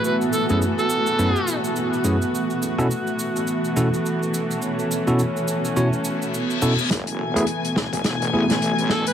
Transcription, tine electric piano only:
X:1
M:4/4
L:1/16
Q:"Swing 16ths" 1/4=105
K:F#m
V:1 name="Tine electric piano"
z3 [F,,A,B,CEG] z4 [F,,A,B,CEB] z4 z [F,,A,B,CEG] z | z3 [B,,CEFA] z6 [B,,CEFA] z4 z | z3 [B,,CEFA] z4 [B,,CEFc] z4 z [B,,CEFA] z | z3 [A,B,EG] z6 [A,B,EG] z4 z |]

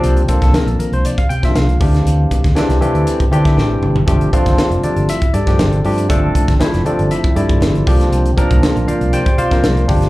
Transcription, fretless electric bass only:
X:1
M:4/4
L:1/16
Q:1/4=119
K:Gdor
V:1 name="Fretless electric bass" clef=bass
C,,2 z C,, z B,,, z C,, z2 C,2 C,,2 D,,2 | D,,2 z D,, z C,, z D,, z2 D,2 A,,,2 G,,,2 | G,,,2 z G,,, z F,,, z G,,, z2 G,,2 G,,,2 G,,2 | G,,,2 z G,,, z F,,, z G,,, z2 G,,2 G,,,2 C,,2 |
C,,2 z C,, z B,,, z C,, z2 C,2 C,,2 G,,,2 |]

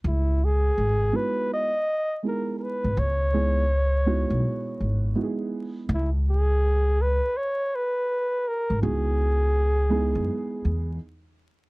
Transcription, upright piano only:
X:1
M:4/4
L:1/8
Q:"Swing 16ths" 1/4=82
K:C#dor
V:1 name="Upright piano"
z3 [G,B,DEF] z2 [G,B,DEG]2- | [G,B,DEG] [G,B,DEG] z [G,B,DEF]3 [G,B,DEFG]2 | z8 | [G,B,DEF]3 [G,B,DEG]3 z2 |]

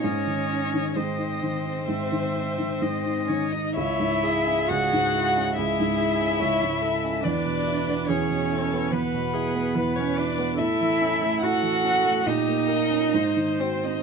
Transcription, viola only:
X:1
M:4/4
L:1/8
Q:1/4=70
K:C#m
V:1 name="Viola"
d2 d2 e2 d2 | c G3 G2 c A | B2 G A B G B2 | A2 A2 =G ^A ^B2 |]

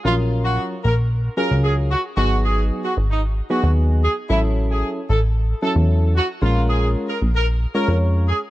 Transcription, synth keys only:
X:1
M:4/4
L:1/8
Q:1/4=113
K:G#dor
V:1 name="Synth keys"
[F,CEA]3 z2 [F,CEG]2 z | [F,B,DG]3 z2 [F,B,DG]2 z | [F,C=E=A]3 z2 [F,CEA]2 z | [G,CEA]3 z2 [G,CEc]2 z |]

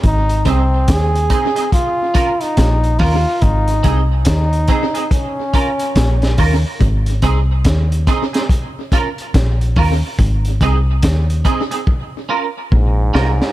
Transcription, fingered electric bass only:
X:1
M:4/4
L:1/16
Q:"Swing 16ths" 1/4=71
K:Ab
V:1 name="Fingered electric bass" clef=bass
A,,,2 C,,2 E,,2 z6 B,,,2 E,, z | A,,,2 C,,2 E,,2 z6 B,,,2 E,, z | A,,,2 C,,2 E,,2 z6 B,,,2 E,, z | A,,,2 C,,2 E,,2 z6 B,,,2 C,, z |]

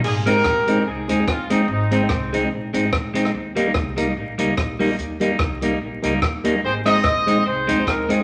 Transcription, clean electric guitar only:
X:1
M:4/4
L:1/8
Q:"Swing" 1/4=146
K:Ab
V:1 name="Clean electric guitar"
z [A,CE] z [A,CE] z [A,CE] z [A,CE] | z [A,CE] z [A,CE] z [A,CE] z [A,CE] | z [G,B,E] z [G,B,E] z [G,B,E] z [G,B,E] | z [G,B,E] z [G,B,E] z [G,B,E] z [G,B,E] |
z [A,CE] z [A,CE] z [A,CE] z [A,CE] |]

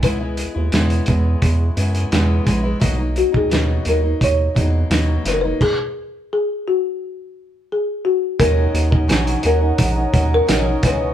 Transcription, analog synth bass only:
X:1
M:4/4
L:1/16
Q:1/4=86
K:D#phr
V:1 name="Analog synth bass" clef=bass
C,,3 D,, E,,2 E,,2 E,,2 F,,2 E,,2 A,,,2 | B,,,3 C,, D,,2 D,,2 D,,2 E,,2 D,,2 F,,,2 | z16 | D,,2 D,,2 A,,,2 D,,2 A,,,2 D,,2 A,,,2 C,,2 |]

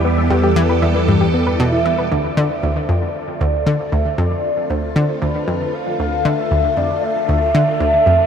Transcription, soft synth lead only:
X:1
M:4/4
L:1/8
Q:1/4=116
K:Ddor
V:1 name="Soft synth lead"
z6 e2 | d2 c d4 e | d2 c2 B2 f2 | e2 d e3 e2 |]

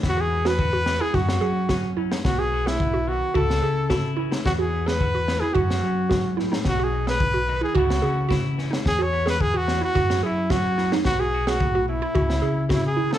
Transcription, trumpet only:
X:1
M:4/4
L:1/16
Q:1/4=109
K:E
V:1 name="Trumpet"
F G2 B4 G F6 z2 | F G2 E3 F2 A6 z2 | F G2 B4 G F6 z2 | F G2 B4 G F6 z2 |
G c2 B G F2 F3 E2 F3 z | F G2 F3 E6 E G2 A |]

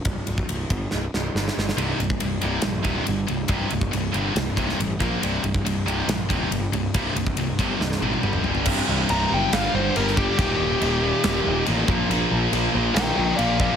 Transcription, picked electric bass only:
X:1
M:4/4
L:1/8
Q:1/4=139
K:Cm
V:1 name="Picked electric bass" clef=bass
C,,, C,,, C,,, G,,, C,,, C,,, G,,, G,,, | C,,, C,,, C,,, C,,, B,,, E,,, G,,, C,,, | C,,, C,,, C,,, G,,, C,,, C,,, =A,,, B,,, | C,,, C,,, C,,, C,,, B,,, E,,, G,,, C,,, |
C,,, C,,, C,,, G,,, C,,, A,,, G,,, G,,, | C,,, C,,, C,,, ^F,,, G,,, G,,, G,,,2 | E,,, E,,, E,,,2 E,,, E,,, =A,,, B,,, | B,,, B,,, B,,, B,,, B,,, B,,, B,,,2 |]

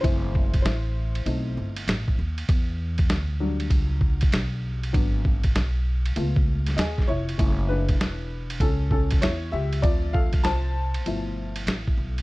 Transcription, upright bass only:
X:1
M:4/4
L:1/8
Q:"Swing 16ths" 1/4=98
K:F#phr
V:1 name="Upright bass" clef=bass
F,,,2 A,,,2 B,,, G,,, A,,, ^D,, | E,,2 D,,2 C,,2 B,,,2 | ^G,,,2 B,,,2 C,,2 ^D,, ^E,,, | F,,,2 E,,,2 C,,2 E,, C,, |
D,,2 =C,,2 G,,,2 A,,, B,,, |]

